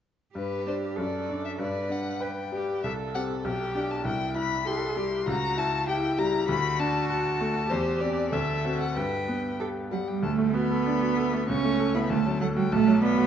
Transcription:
0.34 G2 G4 B4
0.66 D4 C5 D5
0.97 F#2 A4 D5
1.29 D4 D5
1.45 E5
1.59 G2 B4 D5
1.89 D4 F#5
2.21 B4 G5
2.52 G3 G4
2.83 C2 A4 E5
3.15 C4 G4 F#5
3.45 B1 G4 G5
3.75 D4 G4
3.91 A5
4.05 C2 E4 G5
4.36 E4 B5
4.65 G4 A4 C6
4.96 G3 G4
5.27 C#2 F#4 A#5
5.57 E4 A5
5.88 E4 G4 G5
6.19 G3 A#5
6.48 D2 F#4 B5
6.79 D4 A5
7.09 F#4 A5
7.41 A3
7.69 E2 G4 C5
8.00 C4 G4 D5
8.31 D2 A4 E5
8.65 C4 F#4
8.81 F#5
8.95 G2 B4 G5
9.28 B3
9.60 G4 A4
9.91 F#3 G3 F#5
10.08 G3 G5
10.23 D2 A3 A5
10.38 A3
10.54 B3 F#4 B5
10.71 A4
10.86 D4
11.01 F#4
11.17 A4
11.33 A3
11.49 C#2 C#4 C#6
11.65 A3
11.80 A4
11.95 B3 E4 B5
12.10 D2 A3 A5
12.26 F#3
12.40 F#3 A4 F#5
12.56 G3 F#4 G5
12.71 B1 A3 A5
12.88 F#3
13.02 B3 D5 B5
13.17 F#4

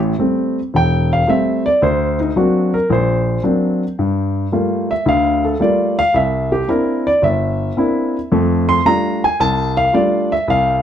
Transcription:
Already playing: A1 A2
0.19 G3 A3 C4
0.74 E1 G5
1.13 F5
1.27 G3 A3 C4 E5
1.66 D5
1.82 D2 C5
2.20 D#4
2.36 F#3 A#3 C4 D4 F#4
2.74 A#4
2.90 A#1 C5
3.43 F#3 A#3 C4 D4
3.99 G2
4.52 G3 A3 A#3 F4
4.91 E5
5.06 D2 D3 F5
5.45 A4
5.60 G3 A3 A#3 F4 D5
5.99 F5
6.14 C2 E5
6.52 G4
6.68 A#3 C4 D4 E4 A#4
7.07 D5
7.22 G1 E5
7.77 A#3 C4 D4 E4
8.32 F2 A3
8.69 C6
8.85 G3 A3 D4 F4 A#5
9.24 G#5
9.40 C2 A5
9.77 F5
9.93 G3 A3 D4 F4 D5
10.32 E5
10.48 C2 F5

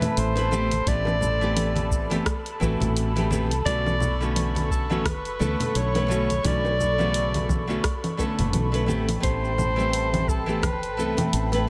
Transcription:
Already playing: E3 A3 B3 C4 A4 B4 A5 B5
0.01 open hi-hat, high bongo, low conga, shaker
0.17 A1 C5, open hi-hat, shaker
0.36 E3 A3 B3 C4 B4, open hi-hat, high bongo, shaker
0.51 E3 A3 B3 C4 G4, low conga, shaker
0.71 open hi-hat, high conga, shaker
0.86 A1 E3 A3 B3 C4 G4 D5, kick, open hi-hat, shaker
1.05 high bongo, low conga, shaker
1.21 low conga, shaker
1.41 E3 A3 B3 C4 G4, shaker
1.57 open hi-hat, low conga, shaker
1.76 open hi-hat, high conga, shaker
1.91 kick, shaker
2.10 E3 A3 B3 C4 G4, open hi-hat, low conga, shaker
2.26 kick, cross-stick, open hi-hat, shaker
2.46 open hi-hat, shaker
2.60 A1 E3 A3 B3 C4 F#4, kick, high bongo, low conga, shaker
2.80 A1, open hi-hat, low conga, shaker
2.97 open hi-hat, shaker
3.16 E3 A3 B3 C4 G4, open hi-hat, low conga, shaker
3.30 E3 A3 B3 C4 G4, high conga, shaker
3.50 C2, open hi-hat, shaker
3.65 B1 D3 A3 B3 C#4 F#4 D5 C#6, kick, open hi-hat, shaker
3.86 low conga, shaker
4.00 low conga, shaker
4.21 D3 A3 B3 C#4 F#4, shaker
4.36 open hi-hat, low conga, shaker
4.55 open hi-hat, high conga, shaker
4.70 A4, kick, shaker
4.90 D3 A3 B3 C#4 F#4, low conga, shaker
5.05 F#1 B4, kick, cross-stick, open hi-hat, high conga, shaker
5.25 open hi-hat, shaker
5.39 D2 D3 A3 B3 C#4 A4, low conga, shaker
5.60 open hi-hat, high bongo, low conga, shaker
5.75 B1 C#5, open hi-hat, shaker
5.94 D3 A3 B3 C#4 B4, open hi-hat, high bongo, low conga, shaker
6.08 D3 A3 B3 C#4 F#4, shaker
6.30 open hi-hat, high conga, shaker
6.43 B1 D3 A3 B3 C#4 F#4 D5, kick, open hi-hat, low conga, shaker
6.65 high bongo, shaker
6.80 low conga, shaker
6.98 C#3 D3 A3 B3 F#4, low conga, shaker
7.14 open hi-hat, shaker
7.34 open hi-hat, high conga, shaker
7.49 kick, low conga, shaker
7.67 D3 A3 B3 C#4 F#4, shaker
7.84 kick, cross-stick, open hi-hat, shaker
8.04 open hi-hat, low conga, shaker
8.17 D3 A3 B3 C#4 A4, kick, high bongo, shaker
8.39 F#1, open hi-hat, low conga, shaker
8.53 B1, open hi-hat, low conga, shaker
8.72 D3 A3 B3 C#4 B4, open hi-hat, shaker
8.86 A1 E3 A3 B3 C4 G4 G5 A5 B5, high conga, shaker
9.09 open hi-hat, low conga, shaker
9.20 A1 E3 A3 B3 C4 G4 C5, kick, open hi-hat
9.24 shaker
9.44 shaker
9.58 low conga, shaker
9.76 E3 G3 A3 C4 G4, shaker
9.93 open hi-hat, shaker
10.14 open hi-hat, high conga, low conga, shaker
10.28 A4, kick, shaker
10.46 E3 A3 B3 C4 G4, shaker
10.63 E1 B4, kick, cross-stick, open hi-hat, high conga, low conga, shaker
10.83 open hi-hat, shaker
10.97 C2 E3 A3 B3 C4 A4, shaker
11.17 open hi-hat, high bongo, low conga, shaker
11.33 A1, open hi-hat, shaker
11.52 E3 A3 B3 C4 B4, open hi-hat, high bongo, shaker

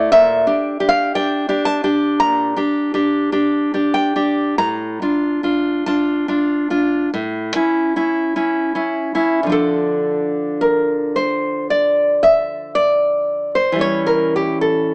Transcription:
Already playing: D5
0.12 A#2 E5
0.47 D4 G4
0.80 D4 G4
0.89 F5
1.15 D4 G4 G5
1.49 D4 G4
1.65 A5
1.84 D4 G4
2.20 A#2 A#5
2.56 D4 G4
2.94 D4 G4
3.32 D4 G4
3.74 D4 G4
3.94 G5
4.16 D4 G4
4.58 A2 A#5
5.02 D4 F4
5.43 D4 F4
5.86 D4 F4 A5
6.28 D4 F4
6.70 D4 F4
7.14 A2
7.55 C#4 E4
7.96 C#4 E4
8.36 C#4 E4
8.75 C#4 E4
9.15 C#4 E4
9.43 D3 F3
9.49 D4 A4
10.61 A#4
11.16 C5
11.70 D5
12.23 E5
12.75 D5
13.55 C5
13.72 E3 G3
13.79 C#4 C#5
14.07 A#4
14.36 G4
14.61 A4

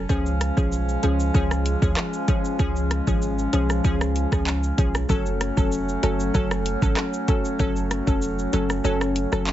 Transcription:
Already playing: C#4
0.09 C#2 F3 G#3 C#4 G#4, kick, shaker
0.26 shaker
0.41 cross-stick, closed hi-hat, shaker
0.57 B1 F3 C#4 G#4, kick, shaker
0.72 shaker
0.89 shaker
1.03 C#2 F3 C#4 G#4, closed hi-hat, shaker
1.20 shaker
1.34 C#2 F3 C#4 G#4, kick, shaker
1.51 cross-stick, shaker
1.66 closed hi-hat, shaker
1.82 D2 F3 C#4 G#4, kick, shaker
1.97 cross-stick, clap, shaker
2.13 shaker
2.28 F3 C#4 G#4, kick, closed hi-hat, shaker
2.45 shaker
2.59 C#2 F3 C#4 G#4, kick, shaker
2.76 shaker
2.91 cross-stick, closed hi-hat, shaker
3.07 G#1 F3 C#4 G#4, kick, shaker
3.22 shaker
3.39 shaker
3.53 B1 F3 C#4 G#4, closed hi-hat, shaker
3.70 cross-stick, shaker
3.84 C#2 F3 C#4 G#4, kick, shaker
4.01 cross-stick, shaker
4.16 closed hi-hat, shaker
4.32 C#2 F3 C#4 G#4, kick, cross-stick, shaker
4.47 clap, shaker
4.63 shaker
4.78 B1 F3 C#4 G#4, kick, closed hi-hat, shaker
4.95 cross-stick, shaker
5.09 F#1 F#3 A3 C#4 A4, kick, shaker
5.26 shaker
5.41 cross-stick, closed hi-hat, shaker
5.57 F1 F#3 C#4 A4, kick, shaker
5.72 shaker
5.89 shaker
6.03 F#1 F#3 C#4 A4, closed hi-hat, shaker
6.20 shaker
6.34 F#1 F#3 C#4 A4, kick, shaker
6.51 cross-stick, shaker
6.66 closed hi-hat, shaker
6.82 G#1 F#3 C#4 A4, kick, shaker
6.97 cross-stick, clap, shaker
7.13 shaker
7.28 F#3 C#4 A4, kick, closed hi-hat, shaker
7.45 shaker
7.59 F#1 F#3 C#4 A4, kick, shaker
7.76 shaker
7.91 cross-stick, closed hi-hat, shaker
8.07 F1 F#3 C#4 A4, kick, shaker
8.22 shaker
8.39 shaker
8.53 F#1 F#3 C#4 A4, closed hi-hat, shaker
8.70 cross-stick, shaker
8.84 F#1 F#3 C#4 A4, shaker
9.01 cross-stick, shaker
9.16 closed hi-hat, shaker
9.32 F#1 F#3 C#4 A4, cross-stick, shaker
9.47 clap, shaker

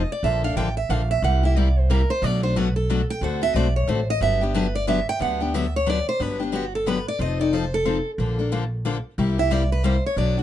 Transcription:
Already playing: D#5
0.12 D5
0.23 A#1 D3 F3 A#3 D4 A4 E5
0.44 A#3 D4 A4 F5
0.56 A1 D3 F3 A#3 D4 A4 G5
0.77 E5
0.89 A#1 D3 F3 A#3 D4 A4 F5
1.11 E5
1.22 C2 C3 G3 A#3 E4 G4 F#5
1.43 A#3 E4 G4 E5
1.56 C3 G3 A#3 E4 G4 D5
1.79 C5
1.90 C3 G3 A#3 E4 G4 A#4
2.10 C5
2.22 B1 B2 F#3 A3 D4 F#4 D5
2.43 A3 D4 F#4 C5
2.56 B2 F#3 A3 D4 F#4 B4
2.76 A4
2.90 B2 F#3 A3 D4 F#4
3.10 G5
3.21 D2 D3 A3 C4 F#4 A4 F#5
3.41 C4 F#4 A4 E5
3.54 B1 D3 A3 C4 F#4 A4 D5
3.76 C#5
3.87 A1 D3 A3 C4 F#4 A4 C5
4.10 D#5
4.21 G1 D3 F#3 B3 D4 G4 E5
4.41 B3 D4 G4
4.54 D3 F#3 B3 D4 G4 B4
4.75 D5
4.87 D3 F#3 B3 D4 G4 E5
5.09 G5
5.20 D2 D3 F#3 B3 D4 G4 F#5
5.40 B3 D4 G4 G5
5.54 D3 F#3 B3 D4 G4 E5
5.76 C#5
5.86 D3 F#3 B3 D4 G4 D5
6.09 C5
6.20 G1 D3 F#3 B3 D4 G4 B4
6.40 B3 D4 G4
6.52 D3 F#3 B3 D4 F#4 G4
6.75 A4
6.86 D3 F#3 B3 D4 G4 B4
7.08 D5
7.19 F1 F3 C4 D#4 A4 D#5
7.39 C4 D#4 A4 D5
7.53 F3 C4 D#4 A4 C5
7.74 A4
7.85 F3 C4 D#4 A4
8.18 A#1 D3 F3 A#3 D4 A4
8.39 A#3 D4 A4
8.52 D3 F3 A#3 D4 A4
8.85 D3 F3 A#3 D4 A4
9.18 C2 C3 G3 A#3 E4 G4
9.38 A#3 E4 G4 E5
9.51 C3 G3 A#3 E4 G4 D5
9.72 B4
9.84 C3 G3 A#3 E4 G4 C5
10.06 C#5
10.16 B1 B2 F#3 A3 D4 F#4 D5
10.37 A3 D4 F#4

